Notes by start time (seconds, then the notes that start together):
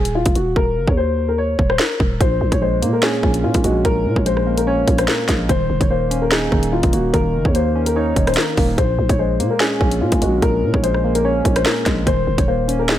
Already playing: D#1 G#4
0.05 closed hi-hat
0.15 F4
0.26 D#1, kick, closed hi-hat
0.35 D#1 F#4, closed hi-hat
0.56 D#1 A#4, kick
0.77 F#1
0.88 D#2 C#5, kick
0.97 C5
1.29 A#4
1.38 C#5
1.59 D#1, kick
1.70 C5, cross-stick
1.79 A#4, snare
2.00 D#1, kick
2.20 A#1 A#2 C5, kick, closed hi-hat
2.41 A#1
2.52 A#1 C#5, kick, closed hi-hat
2.62 G#3 C5
2.82 A#2 A#3, closed hi-hat
2.93 A#4
3.02 C#4 G#4, snare
3.23 A#1 A#2, kick
3.34 closed hi-hat
3.44 A#2 F4
3.54 A#1, kick, closed hi-hat
3.64 A#1 G#3 F#4, closed hi-hat
3.85 A#1 A#2 A#4, kick, closed hi-hat
4.05 A#2
4.16 A#1 C#5, kick
4.26 G#3 C5, closed hi-hat
4.37 cross-stick
4.47 A#3
4.58 A#4, closed hi-hat
4.67 C#4 C#5
4.87 A#1 A#2, kick, closed hi-hat
4.98 C5, cross-stick, closed hi-hat
5.08 A#4, snare
5.29 A#1 G#3, kick, snare, closed hi-hat
5.49 D#1 D#3 C5, kick, closed hi-hat
5.70 D#1
5.81 D#1 C#5, kick, closed hi-hat
5.90 A#3 C5
6.11 C#4, closed hi-hat
6.22 A#4
6.32 D#4 G#4, snare
6.52 D#1 D#3, kick
6.63 closed hi-hat
6.73 F4
6.83 D#1, kick, closed hi-hat
6.93 D#1 A#3 F#4, closed hi-hat
7.14 D#1 D#3 A#4, kick, closed hi-hat
7.34 F#1
7.45 D#2 C#5, kick
7.55 A#3 C5, closed hi-hat
7.75 C#4
7.86 A#4, closed hi-hat
7.96 D#4 C#5
8.16 D#1 D#3, kick, closed hi-hat
8.27 C5, cross-stick, closed hi-hat
8.34 A#4, snare, closed hi-hat
8.41 closed hi-hat
8.57 D#1 A#3, kick, open hi-hat
8.78 A#1 A#2 C5, kick, closed hi-hat
8.99 A#1
9.09 A#1 C#5, kick, closed hi-hat
9.19 G#3 C5
9.40 A#2 A#3, closed hi-hat
9.50 A#4
9.60 C#4 G#4, snare
9.81 A#1 A#2, kick
9.91 closed hi-hat
10.01 A#2 F4
10.12 A#1, kick, closed hi-hat
10.22 A#1 G#3 F#4, closed hi-hat
10.42 A#1 A#2 A#4, kick, closed hi-hat
10.63 A#2
10.74 A#1 C#5, kick
10.83 G#3 C5, closed hi-hat
10.94 cross-stick
11.04 A#3
11.15 A#4, closed hi-hat
11.25 C#4 C#5
11.45 A#1 A#2, kick, closed hi-hat
11.56 C5, cross-stick, closed hi-hat
11.66 A#4, snare
11.86 A#1 G#3, kick, snare, closed hi-hat
12.06 D#1 D#3 C5, kick, closed hi-hat
12.27 D#1
12.38 D#1 C#5, kick, closed hi-hat
12.48 A#3 C5
12.68 C#4, closed hi-hat
12.79 A#4
12.89 D#4 G#4, snare